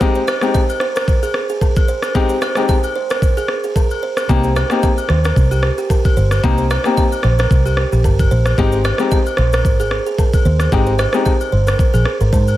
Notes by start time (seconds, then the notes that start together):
0.00 G#3 C4 D#4 G4, kick, shaker
0.15 C5, shaker
0.28 D#5, cross-stick, high agogo, shaker
0.41 G#3 C4 D#4 G4, cross-stick, shaker
0.54 D#5, kick, low woodblock, shaker
0.69 high agogo, shaker
0.80 C5, cross-stick
0.96 A#4, cross-stick, high agogo, shaker
1.08 kick, shaker
1.23 G#4, high agogo, shaker
1.34 cross-stick
1.49 G#4, shaker
1.61 A#4, kick, low woodblock, shaker
1.76 kick, high agogo, shaker
1.88 C5, shaker
2.02 cross-stick, high agogo, shaker
2.15 G#3 C4 D#4 G4, kick, shaker
2.29 C5, shaker
2.41 D#5, cross-stick, high agogo, shaker
2.55 G#3 C4 D#4 G4, cross-stick, shaker
2.69 D#5, kick, low woodblock, shaker
2.83 high agogo, shaker
2.96 C5
3.10 A#4, cross-stick, high agogo, shaker
3.22 kick, shaker
3.37 G#4, high agogo, shaker
3.48 cross-stick
3.64 G#4, shaker
3.76 A#4, kick, low woodblock, shaker
3.91 high agogo, shaker
4.03 C5
4.17 cross-stick, high agogo, shaker
4.29 C2 A#3 C4 D#4 G4, kick, shaker
4.43 C5, shaker
4.56 D#5, cross-stick, high agogo, shaker
4.70 A#3 C4 D#4 G4, cross-stick, shaker
4.83 D#5, kick, low woodblock, shaker
4.98 high agogo, shaker
5.09 D#2 C5, cross-stick
5.24 A#4, cross-stick, high agogo, shaker
5.36 C2, kick, shaker
5.51 G4, high agogo, shaker
5.63 cross-stick
5.78 G4, shaker
5.90 A#4, kick, low woodblock, shaker
6.05 kick, high agogo, shaker
6.17 G1 C5, shaker
6.31 cross-stick, high agogo, shaker
6.43 C2 A#3 C4 D#4 G4, kick, shaker
6.58 C5, shaker
6.70 D#5, cross-stick, high agogo, shaker
6.84 A#3 C4 D#4 G4, cross-stick, shaker
6.97 D#5, kick, low woodblock, shaker
7.12 high agogo, shaker
7.23 A#1 C5, cross-stick
7.39 A#4, cross-stick, high agogo, shaker
7.51 C2, kick, shaker
7.66 G4, high agogo, shaker
7.77 cross-stick
7.92 A#1 G4, shaker
8.04 G1 A#4, kick, low woodblock, shaker
8.19 kick, high agogo, shaker
8.31 A#1 C5, shaker
8.46 cross-stick, high agogo, shaker
8.58 G#1 G#3 C4 D#4 G4, kick, shaker
8.72 C5, shaker
8.84 D#5, cross-stick, high agogo, shaker
8.98 G#3 C4 D#4 G4, cross-stick, shaker
9.11 D#5, kick, low woodblock, shaker
9.26 high agogo, shaker
9.37 A#1 C5, cross-stick
9.53 A#4, cross-stick, high agogo, shaker
9.65 G#1, kick, shaker
9.80 G#4, high agogo, shaker
9.91 cross-stick
10.06 G#4, shaker
10.18 A#4, kick, low woodblock, shaker
10.33 kick, high agogo, shaker
10.45 D#2 C5, shaker
10.60 cross-stick, high agogo, shaker
10.72 G#1 G#3 C4 D#4 G4, kick, shaker
10.86 C5, shaker
10.99 D#5, cross-stick, high agogo, shaker
11.13 G#3 C4 D#4 G4, cross-stick, shaker
11.25 D#5, kick, low woodblock, shaker
11.41 high agogo, shaker
11.52 G1 C5
11.67 A#4, cross-stick, high agogo, shaker
11.79 kick, shaker
11.94 A#1 G#4, high agogo, shaker
12.05 cross-stick
12.21 G#1 A#4, shaker
12.33 G#2 C5, kick, low woodblock, shaker
12.48 high agogo, shaker